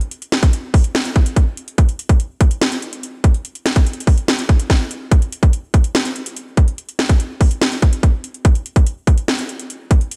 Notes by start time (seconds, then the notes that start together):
0.01 closed hi-hat
0.11 closed hi-hat
0.22 closed hi-hat
0.32 snare, closed hi-hat
0.43 kick, closed hi-hat
0.53 closed hi-hat
0.74 kick, open hi-hat
0.84 closed hi-hat
0.95 snare, closed hi-hat
1.05 closed hi-hat
1.16 kick, closed hi-hat
1.26 closed hi-hat
1.36 kick, closed hi-hat
1.57 closed hi-hat
1.68 closed hi-hat
1.78 kick, closed hi-hat
1.89 closed hi-hat
1.99 closed hi-hat
2.09 kick, closed hi-hat
2.20 closed hi-hat
2.41 kick, closed hi-hat
2.51 closed hi-hat
2.62 snare, closed hi-hat
2.72 closed hi-hat
2.82 closed hi-hat
2.93 closed hi-hat
3.03 closed hi-hat
3.24 kick, closed hi-hat
3.34 closed hi-hat
3.45 closed hi-hat
3.55 closed hi-hat
3.66 snare, closed hi-hat
3.76 kick, closed hi-hat
3.86 closed hi-hat
3.93 closed hi-hat
4.00 closed hi-hat
4.07 kick, open hi-hat
4.18 closed hi-hat
4.28 snare, closed hi-hat
4.39 closed hi-hat
4.49 kick, closed hi-hat
4.60 closed hi-hat
4.70 kick, snare, closed hi-hat
4.91 closed hi-hat
5.11 kick, closed hi-hat
5.22 closed hi-hat
5.32 closed hi-hat
5.43 kick, closed hi-hat
5.53 closed hi-hat
5.74 kick, closed hi-hat
5.84 closed hi-hat
5.95 snare, closed hi-hat
6.05 closed hi-hat
6.16 closed hi-hat
6.26 closed hi-hat
6.37 closed hi-hat
6.57 kick, closed hi-hat
6.68 closed hi-hat
6.78 closed hi-hat
6.89 closed hi-hat
6.99 snare, closed hi-hat
7.09 kick, closed hi-hat
7.20 closed hi-hat
7.41 kick, open hi-hat
7.51 closed hi-hat
7.62 snare, closed hi-hat
7.72 closed hi-hat
7.82 kick, closed hi-hat
7.93 closed hi-hat
8.03 kick, closed hi-hat
8.24 closed hi-hat
8.34 closed hi-hat
8.45 kick, closed hi-hat
8.55 closed hi-hat
8.66 closed hi-hat
8.76 kick, closed hi-hat
8.87 closed hi-hat
9.07 kick, closed hi-hat
9.18 closed hi-hat
9.28 snare, closed hi-hat
9.39 closed hi-hat
9.49 closed hi-hat
9.59 closed hi-hat
9.70 closed hi-hat
9.91 kick, closed hi-hat
10.01 closed hi-hat
10.11 closed hi-hat